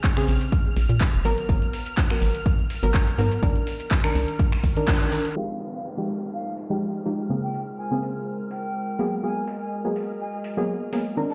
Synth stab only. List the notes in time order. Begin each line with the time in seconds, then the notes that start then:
Already playing: C#3 C4 G#4
0.16 C#3 C4 G#4
1.25 F#3 B3 A#4
1.49 F#3 B3 A#4
2.10 F#3 B3 A#4
2.83 F#3 B3 A#4
3.18 F#3 B3 A#4
3.42 D#3 D4 A#4
4.03 D#3 D4 A#4
4.76 D#3 D4 A#4
5.01 D#3 D4 A#4
5.12 D#3 D4 A#4
5.36 F3 G#3 D#4 G4
5.97 F3 G#3 D#4 G4
6.70 F3 G#3 D#4 G4
7.05 F3 G#3 D#4 G4
7.29 C#3 A#3 C4 G#4
7.91 C#3 A#3 C4 G#4
8.99 F#3 A#3 B3 G#4
9.23 F#3 A#3 B3 G#4
9.84 F#3 A#3 B3 G#4
10.57 F#3 A#3 B3 G#4
10.92 F#3 A#3 B3 G#4
11.16 D#3 C4 D4 A#4